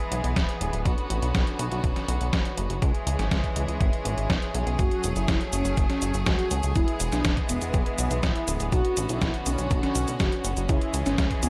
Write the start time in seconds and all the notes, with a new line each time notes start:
Already playing: E3 G#3 B3 G#4
0.12 B1, closed hi-hat
0.24 B1, closed hi-hat
0.36 D1, kick, snare, closed hi-hat
0.49 closed hi-hat
0.61 D1, closed hi-hat
0.73 D1, closed hi-hat
0.85 B1 D3 C#4 F#4, kick, closed hi-hat
0.98 closed hi-hat
1.10 A1, closed hi-hat
1.22 B1, closed hi-hat
1.35 B1, kick, snare, closed hi-hat
1.47 closed hi-hat
1.59 B1, closed hi-hat
1.71 B1, closed hi-hat
1.84 B1, kick, closed hi-hat
1.96 snare, closed hi-hat
2.08 B1, closed hi-hat
2.21 B1, closed hi-hat
2.33 F#1, kick, snare, closed hi-hat
2.45 closed hi-hat
2.57 F#1, closed hi-hat
2.70 F#1, closed hi-hat
2.82 C#2 E3 G#3 C#4 G#4, kick, closed hi-hat
2.95 closed hi-hat
3.07 C#2, closed hi-hat
3.19 G#1, snare, closed hi-hat
3.31 C#2, kick, snare, closed hi-hat
3.44 kick, closed hi-hat
3.56 C#2, closed hi-hat
3.68 C#2, closed hi-hat
3.81 G#1, kick, closed hi-hat
3.93 closed hi-hat
4.05 G#1, closed hi-hat
4.17 G#1, closed hi-hat
4.30 B1, kick, snare, closed hi-hat
4.42 closed hi-hat
4.54 B1, closed hi-hat
4.67 B1, closed hi-hat
4.79 F#1 F#3 A3 F#4, kick, closed hi-hat, cabasa
4.91 closed hi-hat
5.03 E1, closed hi-hat, cabasa
5.16 F#1 E4, closed hi-hat, cabasa
5.28 F#1, kick, snare, closed hi-hat, cabasa
5.41 closed hi-hat
5.53 F#1 C#4, closed hi-hat, cabasa
5.65 F#1, closed hi-hat, cabasa
5.77 F#1, kick, closed hi-hat, cabasa
5.89 C#4, snare, closed hi-hat
6.02 F#1, closed hi-hat, cabasa
6.14 F#1, closed hi-hat, cabasa
6.26 C#2 F#4, kick, snare, closed hi-hat, cabasa
6.39 closed hi-hat
6.51 C#2, closed hi-hat, cabasa
6.63 C#2, closed hi-hat, cabasa
6.75 E1 E3 G#3 B3 E4, kick, closed hi-hat, cabasa
6.88 closed hi-hat
7.00 E1, closed hi-hat, cabasa
7.12 B1 D4, snare, closed hi-hat, cabasa
7.25 E1, kick, snare, closed hi-hat, cabasa
7.37 kick, closed hi-hat
7.49 E1 B3, closed hi-hat, cabasa
7.62 E1, closed hi-hat, cabasa
7.74 B1, kick, closed hi-hat, cabasa
7.86 B3, closed hi-hat
7.98 B1, closed hi-hat, cabasa
8.11 B1, closed hi-hat, cabasa
8.23 D1 E4, kick, snare, closed hi-hat, cabasa
8.36 closed hi-hat
8.48 D1, closed hi-hat, cabasa
8.60 D1, closed hi-hat, cabasa
8.72 B1 D3 C#4 F#4, kick, closed hi-hat, cabasa
8.85 closed hi-hat
8.97 A1, closed hi-hat, cabasa
9.09 B1 E4, closed hi-hat, cabasa
9.21 B1, kick, snare, closed hi-hat, cabasa
9.34 closed hi-hat
9.46 B1 C#4, closed hi-hat, cabasa
9.58 B1, closed hi-hat, cabasa
9.71 B1, kick, closed hi-hat, cabasa
9.83 C#4, snare, closed hi-hat
9.95 B1, closed hi-hat, cabasa
10.08 B1, closed hi-hat, cabasa
10.20 F#1 F#4, kick, snare, closed hi-hat, cabasa
10.32 closed hi-hat
10.44 F#1, closed hi-hat, cabasa
10.57 F#1, closed hi-hat, cabasa
10.69 C#2 E3 G#3 E4 G#4, kick, closed hi-hat, cabasa
10.81 closed hi-hat
10.94 C#2, closed hi-hat, cabasa
11.06 G#1 C#4, snare, closed hi-hat, cabasa
11.18 C#2, kick, snare, closed hi-hat, cabasa
11.31 kick, closed hi-hat
11.43 C#2 B3, closed hi-hat, cabasa